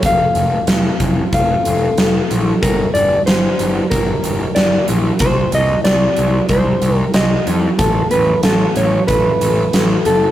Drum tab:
HH |xxxxxxxx|xxxxxxxx|xxxxxxxx|xxxxxxxx|
SD |--o---o-|--o---o-|--o---o-|--o---o-|
BD |o--oo---|o---o---|o---o---|o---o---|